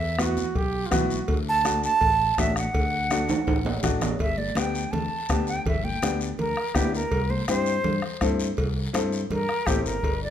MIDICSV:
0, 0, Header, 1, 7, 480
1, 0, Start_track
1, 0, Key_signature, 1, "major"
1, 0, Tempo, 364520
1, 1692, Time_signature, 4, 2, 24, 8
1, 13564, End_track
2, 0, Start_track
2, 0, Title_t, "Flute"
2, 0, Program_c, 0, 73
2, 0, Note_on_c, 0, 76, 86
2, 267, Note_off_c, 0, 76, 0
2, 1960, Note_on_c, 0, 81, 110
2, 2394, Note_off_c, 0, 81, 0
2, 2433, Note_on_c, 0, 81, 109
2, 3153, Note_on_c, 0, 76, 90
2, 3172, Note_off_c, 0, 81, 0
2, 3383, Note_off_c, 0, 76, 0
2, 3392, Note_on_c, 0, 78, 92
2, 5011, Note_off_c, 0, 78, 0
2, 5541, Note_on_c, 0, 76, 88
2, 5765, Note_on_c, 0, 74, 76
2, 5785, Note_off_c, 0, 76, 0
2, 6017, Note_on_c, 0, 79, 77
2, 6037, Note_off_c, 0, 74, 0
2, 6474, Note_on_c, 0, 81, 88
2, 6494, Note_off_c, 0, 79, 0
2, 7183, Note_off_c, 0, 81, 0
2, 7225, Note_on_c, 0, 79, 82
2, 7453, Note_off_c, 0, 79, 0
2, 7471, Note_on_c, 0, 76, 81
2, 7694, Note_on_c, 0, 79, 91
2, 7714, Note_off_c, 0, 76, 0
2, 8160, Note_off_c, 0, 79, 0
2, 8406, Note_on_c, 0, 70, 93
2, 8882, Note_on_c, 0, 67, 88
2, 8902, Note_off_c, 0, 70, 0
2, 9121, Note_off_c, 0, 67, 0
2, 9153, Note_on_c, 0, 70, 82
2, 9617, Note_on_c, 0, 72, 85
2, 9636, Note_off_c, 0, 70, 0
2, 9837, Note_off_c, 0, 72, 0
2, 9845, Note_on_c, 0, 72, 103
2, 10780, Note_off_c, 0, 72, 0
2, 12262, Note_on_c, 0, 70, 93
2, 12725, Note_on_c, 0, 67, 93
2, 12744, Note_off_c, 0, 70, 0
2, 12957, Note_off_c, 0, 67, 0
2, 12965, Note_on_c, 0, 70, 87
2, 13434, Note_off_c, 0, 70, 0
2, 13477, Note_on_c, 0, 74, 78
2, 13564, Note_off_c, 0, 74, 0
2, 13564, End_track
3, 0, Start_track
3, 0, Title_t, "Trombone"
3, 0, Program_c, 1, 57
3, 267, Note_on_c, 1, 66, 91
3, 740, Note_on_c, 1, 67, 100
3, 760, Note_off_c, 1, 66, 0
3, 1134, Note_on_c, 1, 65, 64
3, 1154, Note_off_c, 1, 67, 0
3, 1227, Note_on_c, 1, 66, 86
3, 1247, Note_off_c, 1, 65, 0
3, 1820, Note_off_c, 1, 66, 0
3, 13564, End_track
4, 0, Start_track
4, 0, Title_t, "Upright piano"
4, 0, Program_c, 2, 0
4, 241, Note_on_c, 2, 59, 68
4, 244, Note_on_c, 2, 64, 61
4, 255, Note_on_c, 2, 66, 74
4, 582, Note_off_c, 2, 59, 0
4, 584, Note_off_c, 2, 64, 0
4, 589, Note_off_c, 2, 66, 0
4, 1196, Note_on_c, 2, 59, 79
4, 1203, Note_on_c, 2, 64, 75
4, 1211, Note_on_c, 2, 66, 98
4, 1540, Note_off_c, 2, 59, 0
4, 1544, Note_off_c, 2, 64, 0
4, 1548, Note_off_c, 2, 66, 0
4, 2162, Note_on_c, 2, 57, 69
4, 2164, Note_on_c, 2, 62, 61
4, 2175, Note_on_c, 2, 66, 82
4, 2504, Note_off_c, 2, 57, 0
4, 2505, Note_off_c, 2, 62, 0
4, 2510, Note_off_c, 2, 66, 0
4, 3131, Note_on_c, 2, 57, 72
4, 3142, Note_on_c, 2, 62, 63
4, 3142, Note_on_c, 2, 66, 77
4, 3468, Note_off_c, 2, 57, 0
4, 3474, Note_off_c, 2, 62, 0
4, 3474, Note_off_c, 2, 66, 0
4, 4096, Note_on_c, 2, 57, 82
4, 4099, Note_on_c, 2, 62, 75
4, 4106, Note_on_c, 2, 66, 87
4, 4431, Note_off_c, 2, 57, 0
4, 4432, Note_off_c, 2, 62, 0
4, 4436, Note_off_c, 2, 66, 0
4, 5044, Note_on_c, 2, 57, 81
4, 5054, Note_on_c, 2, 62, 73
4, 5056, Note_on_c, 2, 66, 95
4, 5385, Note_off_c, 2, 57, 0
4, 5390, Note_off_c, 2, 62, 0
4, 5391, Note_off_c, 2, 66, 0
4, 6006, Note_on_c, 2, 59, 67
4, 6013, Note_on_c, 2, 62, 59
4, 6016, Note_on_c, 2, 67, 72
4, 6347, Note_off_c, 2, 59, 0
4, 6350, Note_off_c, 2, 62, 0
4, 6351, Note_off_c, 2, 67, 0
4, 6971, Note_on_c, 2, 59, 65
4, 6977, Note_on_c, 2, 62, 62
4, 6982, Note_on_c, 2, 67, 76
4, 7309, Note_off_c, 2, 59, 0
4, 7312, Note_off_c, 2, 62, 0
4, 7314, Note_off_c, 2, 67, 0
4, 7935, Note_on_c, 2, 59, 67
4, 7938, Note_on_c, 2, 62, 67
4, 7940, Note_on_c, 2, 67, 71
4, 8271, Note_off_c, 2, 59, 0
4, 8273, Note_off_c, 2, 62, 0
4, 8273, Note_off_c, 2, 67, 0
4, 8893, Note_on_c, 2, 59, 74
4, 8894, Note_on_c, 2, 62, 64
4, 8899, Note_on_c, 2, 64, 73
4, 9230, Note_off_c, 2, 59, 0
4, 9231, Note_off_c, 2, 62, 0
4, 9233, Note_off_c, 2, 64, 0
4, 9855, Note_on_c, 2, 60, 74
4, 9861, Note_on_c, 2, 64, 63
4, 9870, Note_on_c, 2, 67, 77
4, 10191, Note_off_c, 2, 60, 0
4, 10194, Note_off_c, 2, 64, 0
4, 10198, Note_off_c, 2, 67, 0
4, 10811, Note_on_c, 2, 60, 84
4, 10813, Note_on_c, 2, 64, 73
4, 10824, Note_on_c, 2, 69, 93
4, 11148, Note_off_c, 2, 60, 0
4, 11149, Note_off_c, 2, 64, 0
4, 11155, Note_off_c, 2, 69, 0
4, 11763, Note_on_c, 2, 64, 75
4, 11767, Note_on_c, 2, 60, 82
4, 11772, Note_on_c, 2, 69, 92
4, 12104, Note_off_c, 2, 64, 0
4, 12106, Note_off_c, 2, 60, 0
4, 12109, Note_off_c, 2, 69, 0
4, 12735, Note_on_c, 2, 60, 68
4, 12739, Note_on_c, 2, 64, 62
4, 12745, Note_on_c, 2, 69, 76
4, 13070, Note_off_c, 2, 60, 0
4, 13071, Note_off_c, 2, 64, 0
4, 13074, Note_off_c, 2, 69, 0
4, 13564, End_track
5, 0, Start_track
5, 0, Title_t, "Fingered electric bass"
5, 0, Program_c, 3, 33
5, 0, Note_on_c, 3, 40, 107
5, 539, Note_off_c, 3, 40, 0
5, 728, Note_on_c, 3, 35, 92
5, 1113, Note_off_c, 3, 35, 0
5, 1207, Note_on_c, 3, 35, 99
5, 1593, Note_off_c, 3, 35, 0
5, 1690, Note_on_c, 3, 38, 105
5, 2460, Note_off_c, 3, 38, 0
5, 2650, Note_on_c, 3, 33, 98
5, 3036, Note_off_c, 3, 33, 0
5, 3131, Note_on_c, 3, 33, 97
5, 3516, Note_off_c, 3, 33, 0
5, 3612, Note_on_c, 3, 38, 106
5, 4381, Note_off_c, 3, 38, 0
5, 4573, Note_on_c, 3, 33, 95
5, 4958, Note_off_c, 3, 33, 0
5, 5049, Note_on_c, 3, 33, 98
5, 5435, Note_off_c, 3, 33, 0
5, 5529, Note_on_c, 3, 31, 102
5, 5915, Note_off_c, 3, 31, 0
5, 5998, Note_on_c, 3, 38, 93
5, 6389, Note_off_c, 3, 38, 0
5, 6488, Note_on_c, 3, 38, 84
5, 6683, Note_off_c, 3, 38, 0
5, 6970, Note_on_c, 3, 38, 90
5, 7356, Note_off_c, 3, 38, 0
5, 7448, Note_on_c, 3, 31, 105
5, 7835, Note_off_c, 3, 31, 0
5, 7931, Note_on_c, 3, 38, 95
5, 8317, Note_off_c, 3, 38, 0
5, 8419, Note_on_c, 3, 38, 87
5, 8609, Note_off_c, 3, 38, 0
5, 8882, Note_on_c, 3, 38, 99
5, 9271, Note_off_c, 3, 38, 0
5, 9368, Note_on_c, 3, 36, 109
5, 9754, Note_off_c, 3, 36, 0
5, 9856, Note_on_c, 3, 43, 92
5, 10239, Note_off_c, 3, 43, 0
5, 10329, Note_on_c, 3, 43, 93
5, 10523, Note_off_c, 3, 43, 0
5, 10815, Note_on_c, 3, 43, 97
5, 11198, Note_off_c, 3, 43, 0
5, 11299, Note_on_c, 3, 36, 104
5, 11680, Note_off_c, 3, 36, 0
5, 11774, Note_on_c, 3, 43, 86
5, 12157, Note_off_c, 3, 43, 0
5, 12250, Note_on_c, 3, 43, 87
5, 12443, Note_off_c, 3, 43, 0
5, 12729, Note_on_c, 3, 33, 87
5, 12946, Note_off_c, 3, 33, 0
5, 12961, Note_on_c, 3, 31, 85
5, 13182, Note_off_c, 3, 31, 0
5, 13207, Note_on_c, 3, 31, 102
5, 13564, Note_off_c, 3, 31, 0
5, 13564, End_track
6, 0, Start_track
6, 0, Title_t, "Two-headed folk drums"
6, 244, Note_on_c, 9, 37, 86
6, 375, Note_off_c, 9, 37, 0
6, 730, Note_on_c, 9, 36, 85
6, 862, Note_off_c, 9, 36, 0
6, 1208, Note_on_c, 9, 37, 79
6, 1211, Note_on_c, 9, 36, 70
6, 1339, Note_off_c, 9, 37, 0
6, 1342, Note_off_c, 9, 36, 0
6, 1692, Note_on_c, 9, 36, 82
6, 1823, Note_off_c, 9, 36, 0
6, 2177, Note_on_c, 9, 37, 81
6, 2308, Note_off_c, 9, 37, 0
6, 2653, Note_on_c, 9, 36, 85
6, 2784, Note_off_c, 9, 36, 0
6, 3134, Note_on_c, 9, 36, 70
6, 3138, Note_on_c, 9, 37, 83
6, 3266, Note_off_c, 9, 36, 0
6, 3270, Note_off_c, 9, 37, 0
6, 3370, Note_on_c, 9, 37, 74
6, 3502, Note_off_c, 9, 37, 0
6, 3613, Note_on_c, 9, 36, 81
6, 3744, Note_off_c, 9, 36, 0
6, 4094, Note_on_c, 9, 37, 82
6, 4225, Note_off_c, 9, 37, 0
6, 4573, Note_on_c, 9, 36, 86
6, 4705, Note_off_c, 9, 36, 0
6, 5052, Note_on_c, 9, 36, 73
6, 5055, Note_on_c, 9, 37, 80
6, 5183, Note_off_c, 9, 36, 0
6, 5186, Note_off_c, 9, 37, 0
6, 5293, Note_on_c, 9, 37, 69
6, 5424, Note_off_c, 9, 37, 0
6, 5531, Note_on_c, 9, 36, 79
6, 5663, Note_off_c, 9, 36, 0
6, 6015, Note_on_c, 9, 37, 77
6, 6147, Note_off_c, 9, 37, 0
6, 6973, Note_on_c, 9, 36, 81
6, 6977, Note_on_c, 9, 37, 84
6, 7105, Note_off_c, 9, 36, 0
6, 7109, Note_off_c, 9, 37, 0
6, 7453, Note_on_c, 9, 36, 82
6, 7585, Note_off_c, 9, 36, 0
6, 7937, Note_on_c, 9, 37, 79
6, 8068, Note_off_c, 9, 37, 0
6, 8653, Note_on_c, 9, 37, 72
6, 8785, Note_off_c, 9, 37, 0
6, 8883, Note_on_c, 9, 37, 85
6, 8889, Note_on_c, 9, 36, 82
6, 9014, Note_off_c, 9, 37, 0
6, 9021, Note_off_c, 9, 36, 0
6, 9368, Note_on_c, 9, 36, 81
6, 9500, Note_off_c, 9, 36, 0
6, 9850, Note_on_c, 9, 37, 80
6, 9981, Note_off_c, 9, 37, 0
6, 10564, Note_on_c, 9, 37, 67
6, 10696, Note_off_c, 9, 37, 0
6, 10811, Note_on_c, 9, 37, 83
6, 10816, Note_on_c, 9, 36, 76
6, 10943, Note_off_c, 9, 37, 0
6, 10947, Note_off_c, 9, 36, 0
6, 11299, Note_on_c, 9, 36, 82
6, 11431, Note_off_c, 9, 36, 0
6, 11784, Note_on_c, 9, 37, 81
6, 11916, Note_off_c, 9, 37, 0
6, 12495, Note_on_c, 9, 37, 69
6, 12627, Note_off_c, 9, 37, 0
6, 12728, Note_on_c, 9, 37, 86
6, 12733, Note_on_c, 9, 36, 85
6, 12860, Note_off_c, 9, 37, 0
6, 12864, Note_off_c, 9, 36, 0
6, 13212, Note_on_c, 9, 36, 83
6, 13344, Note_off_c, 9, 36, 0
6, 13564, End_track
7, 0, Start_track
7, 0, Title_t, "Drums"
7, 254, Note_on_c, 9, 63, 77
7, 255, Note_on_c, 9, 56, 70
7, 255, Note_on_c, 9, 73, 69
7, 386, Note_off_c, 9, 56, 0
7, 386, Note_off_c, 9, 63, 0
7, 387, Note_off_c, 9, 73, 0
7, 487, Note_on_c, 9, 73, 68
7, 493, Note_on_c, 9, 64, 69
7, 618, Note_off_c, 9, 73, 0
7, 625, Note_off_c, 9, 64, 0
7, 730, Note_on_c, 9, 56, 73
7, 734, Note_on_c, 9, 63, 34
7, 737, Note_on_c, 9, 74, 66
7, 862, Note_off_c, 9, 56, 0
7, 866, Note_off_c, 9, 63, 0
7, 869, Note_off_c, 9, 74, 0
7, 1204, Note_on_c, 9, 56, 68
7, 1206, Note_on_c, 9, 73, 74
7, 1218, Note_on_c, 9, 63, 85
7, 1218, Note_on_c, 9, 64, 83
7, 1335, Note_off_c, 9, 56, 0
7, 1337, Note_off_c, 9, 73, 0
7, 1350, Note_off_c, 9, 63, 0
7, 1350, Note_off_c, 9, 64, 0
7, 1455, Note_on_c, 9, 73, 71
7, 1586, Note_off_c, 9, 73, 0
7, 1686, Note_on_c, 9, 56, 93
7, 1689, Note_on_c, 9, 74, 67
7, 1694, Note_on_c, 9, 63, 33
7, 1818, Note_off_c, 9, 56, 0
7, 1820, Note_off_c, 9, 74, 0
7, 1825, Note_off_c, 9, 63, 0
7, 2169, Note_on_c, 9, 63, 76
7, 2172, Note_on_c, 9, 73, 74
7, 2173, Note_on_c, 9, 56, 67
7, 2300, Note_off_c, 9, 63, 0
7, 2303, Note_off_c, 9, 73, 0
7, 2305, Note_off_c, 9, 56, 0
7, 2416, Note_on_c, 9, 73, 68
7, 2548, Note_off_c, 9, 73, 0
7, 2646, Note_on_c, 9, 56, 78
7, 2661, Note_on_c, 9, 63, 32
7, 2665, Note_on_c, 9, 74, 69
7, 2778, Note_off_c, 9, 56, 0
7, 2793, Note_off_c, 9, 63, 0
7, 2797, Note_off_c, 9, 74, 0
7, 3137, Note_on_c, 9, 56, 61
7, 3137, Note_on_c, 9, 66, 68
7, 3138, Note_on_c, 9, 63, 85
7, 3138, Note_on_c, 9, 73, 67
7, 3269, Note_off_c, 9, 56, 0
7, 3269, Note_off_c, 9, 63, 0
7, 3269, Note_off_c, 9, 66, 0
7, 3269, Note_off_c, 9, 73, 0
7, 3380, Note_on_c, 9, 73, 69
7, 3512, Note_off_c, 9, 73, 0
7, 3611, Note_on_c, 9, 74, 63
7, 3615, Note_on_c, 9, 56, 95
7, 3621, Note_on_c, 9, 63, 35
7, 3743, Note_off_c, 9, 74, 0
7, 3747, Note_off_c, 9, 56, 0
7, 3753, Note_off_c, 9, 63, 0
7, 4089, Note_on_c, 9, 63, 80
7, 4089, Note_on_c, 9, 73, 69
7, 4098, Note_on_c, 9, 56, 65
7, 4220, Note_off_c, 9, 73, 0
7, 4221, Note_off_c, 9, 63, 0
7, 4230, Note_off_c, 9, 56, 0
7, 4327, Note_on_c, 9, 64, 69
7, 4334, Note_on_c, 9, 73, 65
7, 4340, Note_on_c, 9, 65, 90
7, 4458, Note_off_c, 9, 64, 0
7, 4465, Note_off_c, 9, 73, 0
7, 4472, Note_off_c, 9, 65, 0
7, 4569, Note_on_c, 9, 74, 65
7, 4570, Note_on_c, 9, 63, 34
7, 4579, Note_on_c, 9, 56, 81
7, 4579, Note_on_c, 9, 65, 93
7, 4701, Note_off_c, 9, 74, 0
7, 4702, Note_off_c, 9, 63, 0
7, 4710, Note_off_c, 9, 56, 0
7, 4710, Note_off_c, 9, 65, 0
7, 4801, Note_on_c, 9, 63, 70
7, 4821, Note_on_c, 9, 66, 103
7, 4933, Note_off_c, 9, 63, 0
7, 4952, Note_off_c, 9, 66, 0
7, 5041, Note_on_c, 9, 73, 72
7, 5044, Note_on_c, 9, 64, 84
7, 5053, Note_on_c, 9, 56, 61
7, 5172, Note_off_c, 9, 73, 0
7, 5176, Note_off_c, 9, 64, 0
7, 5185, Note_off_c, 9, 56, 0
7, 5285, Note_on_c, 9, 73, 70
7, 5287, Note_on_c, 9, 64, 83
7, 5291, Note_on_c, 9, 66, 92
7, 5417, Note_off_c, 9, 73, 0
7, 5419, Note_off_c, 9, 64, 0
7, 5422, Note_off_c, 9, 66, 0
7, 5521, Note_on_c, 9, 74, 64
7, 5523, Note_on_c, 9, 63, 33
7, 5532, Note_on_c, 9, 56, 93
7, 5652, Note_off_c, 9, 74, 0
7, 5655, Note_off_c, 9, 63, 0
7, 5664, Note_off_c, 9, 56, 0
7, 5765, Note_on_c, 9, 63, 70
7, 5897, Note_off_c, 9, 63, 0
7, 5996, Note_on_c, 9, 63, 89
7, 6007, Note_on_c, 9, 56, 67
7, 6014, Note_on_c, 9, 73, 65
7, 6128, Note_off_c, 9, 63, 0
7, 6139, Note_off_c, 9, 56, 0
7, 6146, Note_off_c, 9, 73, 0
7, 6253, Note_on_c, 9, 73, 63
7, 6385, Note_off_c, 9, 73, 0
7, 6489, Note_on_c, 9, 74, 64
7, 6492, Note_on_c, 9, 56, 78
7, 6498, Note_on_c, 9, 63, 31
7, 6498, Note_on_c, 9, 64, 80
7, 6620, Note_off_c, 9, 74, 0
7, 6623, Note_off_c, 9, 56, 0
7, 6630, Note_off_c, 9, 63, 0
7, 6630, Note_off_c, 9, 64, 0
7, 6963, Note_on_c, 9, 73, 70
7, 6975, Note_on_c, 9, 56, 63
7, 6981, Note_on_c, 9, 63, 84
7, 7095, Note_off_c, 9, 73, 0
7, 7106, Note_off_c, 9, 56, 0
7, 7113, Note_off_c, 9, 63, 0
7, 7204, Note_on_c, 9, 73, 68
7, 7335, Note_off_c, 9, 73, 0
7, 7444, Note_on_c, 9, 74, 63
7, 7459, Note_on_c, 9, 56, 94
7, 7460, Note_on_c, 9, 63, 36
7, 7460, Note_on_c, 9, 64, 72
7, 7575, Note_off_c, 9, 74, 0
7, 7591, Note_off_c, 9, 56, 0
7, 7591, Note_off_c, 9, 63, 0
7, 7591, Note_off_c, 9, 64, 0
7, 7698, Note_on_c, 9, 63, 74
7, 7829, Note_off_c, 9, 63, 0
7, 7932, Note_on_c, 9, 73, 69
7, 7939, Note_on_c, 9, 56, 65
7, 7945, Note_on_c, 9, 63, 90
7, 8064, Note_off_c, 9, 73, 0
7, 8071, Note_off_c, 9, 56, 0
7, 8077, Note_off_c, 9, 63, 0
7, 8175, Note_on_c, 9, 73, 66
7, 8307, Note_off_c, 9, 73, 0
7, 8413, Note_on_c, 9, 56, 76
7, 8414, Note_on_c, 9, 74, 68
7, 8416, Note_on_c, 9, 63, 31
7, 8416, Note_on_c, 9, 64, 79
7, 8544, Note_off_c, 9, 56, 0
7, 8546, Note_off_c, 9, 74, 0
7, 8548, Note_off_c, 9, 63, 0
7, 8548, Note_off_c, 9, 64, 0
7, 8889, Note_on_c, 9, 63, 84
7, 8893, Note_on_c, 9, 56, 65
7, 8893, Note_on_c, 9, 66, 63
7, 8895, Note_on_c, 9, 73, 67
7, 9020, Note_off_c, 9, 63, 0
7, 9024, Note_off_c, 9, 56, 0
7, 9024, Note_off_c, 9, 66, 0
7, 9027, Note_off_c, 9, 73, 0
7, 9146, Note_on_c, 9, 73, 70
7, 9277, Note_off_c, 9, 73, 0
7, 9370, Note_on_c, 9, 56, 99
7, 9376, Note_on_c, 9, 74, 64
7, 9384, Note_on_c, 9, 63, 33
7, 9501, Note_off_c, 9, 56, 0
7, 9508, Note_off_c, 9, 74, 0
7, 9516, Note_off_c, 9, 63, 0
7, 9612, Note_on_c, 9, 63, 71
7, 9744, Note_off_c, 9, 63, 0
7, 9849, Note_on_c, 9, 73, 74
7, 9850, Note_on_c, 9, 56, 61
7, 9861, Note_on_c, 9, 63, 88
7, 9980, Note_off_c, 9, 73, 0
7, 9982, Note_off_c, 9, 56, 0
7, 9993, Note_off_c, 9, 63, 0
7, 10088, Note_on_c, 9, 73, 64
7, 10220, Note_off_c, 9, 73, 0
7, 10320, Note_on_c, 9, 74, 65
7, 10328, Note_on_c, 9, 63, 34
7, 10328, Note_on_c, 9, 64, 83
7, 10329, Note_on_c, 9, 56, 75
7, 10452, Note_off_c, 9, 74, 0
7, 10460, Note_off_c, 9, 63, 0
7, 10460, Note_off_c, 9, 64, 0
7, 10461, Note_off_c, 9, 56, 0
7, 10813, Note_on_c, 9, 63, 84
7, 10813, Note_on_c, 9, 73, 69
7, 10821, Note_on_c, 9, 56, 63
7, 10944, Note_off_c, 9, 63, 0
7, 10945, Note_off_c, 9, 73, 0
7, 10953, Note_off_c, 9, 56, 0
7, 11055, Note_on_c, 9, 73, 65
7, 11186, Note_off_c, 9, 73, 0
7, 11286, Note_on_c, 9, 74, 68
7, 11299, Note_on_c, 9, 56, 96
7, 11306, Note_on_c, 9, 63, 35
7, 11418, Note_off_c, 9, 74, 0
7, 11430, Note_off_c, 9, 56, 0
7, 11437, Note_off_c, 9, 63, 0
7, 11773, Note_on_c, 9, 73, 68
7, 11776, Note_on_c, 9, 56, 64
7, 11776, Note_on_c, 9, 63, 88
7, 11904, Note_off_c, 9, 73, 0
7, 11907, Note_off_c, 9, 63, 0
7, 11908, Note_off_c, 9, 56, 0
7, 12016, Note_on_c, 9, 73, 67
7, 12147, Note_off_c, 9, 73, 0
7, 12254, Note_on_c, 9, 63, 33
7, 12254, Note_on_c, 9, 64, 75
7, 12257, Note_on_c, 9, 74, 62
7, 12267, Note_on_c, 9, 56, 83
7, 12385, Note_off_c, 9, 63, 0
7, 12385, Note_off_c, 9, 64, 0
7, 12388, Note_off_c, 9, 74, 0
7, 12399, Note_off_c, 9, 56, 0
7, 12734, Note_on_c, 9, 63, 80
7, 12740, Note_on_c, 9, 73, 70
7, 12745, Note_on_c, 9, 56, 64
7, 12745, Note_on_c, 9, 66, 66
7, 12866, Note_off_c, 9, 63, 0
7, 12871, Note_off_c, 9, 73, 0
7, 12877, Note_off_c, 9, 56, 0
7, 12877, Note_off_c, 9, 66, 0
7, 12982, Note_on_c, 9, 73, 71
7, 13113, Note_off_c, 9, 73, 0
7, 13214, Note_on_c, 9, 63, 36
7, 13219, Note_on_c, 9, 74, 67
7, 13225, Note_on_c, 9, 56, 88
7, 13346, Note_off_c, 9, 63, 0
7, 13350, Note_off_c, 9, 74, 0
7, 13357, Note_off_c, 9, 56, 0
7, 13564, End_track
0, 0, End_of_file